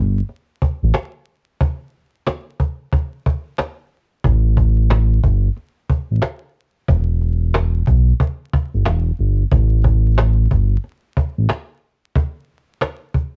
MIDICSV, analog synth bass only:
0, 0, Header, 1, 2, 480
1, 0, Start_track
1, 0, Tempo, 659341
1, 1168, Time_signature, 4, 2, 24, 8
1, 9726, End_track
2, 0, Start_track
2, 0, Title_t, "Analog synth bass"
2, 0, Program_c, 0, 38
2, 0, Note_on_c, 0, 31, 90
2, 156, Note_off_c, 0, 31, 0
2, 604, Note_on_c, 0, 33, 91
2, 671, Note_off_c, 0, 33, 0
2, 3093, Note_on_c, 0, 33, 101
2, 3782, Note_off_c, 0, 33, 0
2, 3814, Note_on_c, 0, 31, 92
2, 3996, Note_off_c, 0, 31, 0
2, 4446, Note_on_c, 0, 33, 94
2, 4512, Note_off_c, 0, 33, 0
2, 5013, Note_on_c, 0, 28, 102
2, 5701, Note_off_c, 0, 28, 0
2, 5733, Note_on_c, 0, 35, 93
2, 5916, Note_off_c, 0, 35, 0
2, 6364, Note_on_c, 0, 31, 89
2, 6430, Note_off_c, 0, 31, 0
2, 6453, Note_on_c, 0, 28, 98
2, 6636, Note_off_c, 0, 28, 0
2, 6693, Note_on_c, 0, 31, 95
2, 6876, Note_off_c, 0, 31, 0
2, 6932, Note_on_c, 0, 33, 100
2, 7621, Note_off_c, 0, 33, 0
2, 7653, Note_on_c, 0, 31, 94
2, 7836, Note_off_c, 0, 31, 0
2, 8286, Note_on_c, 0, 33, 93
2, 8352, Note_off_c, 0, 33, 0
2, 9726, End_track
0, 0, End_of_file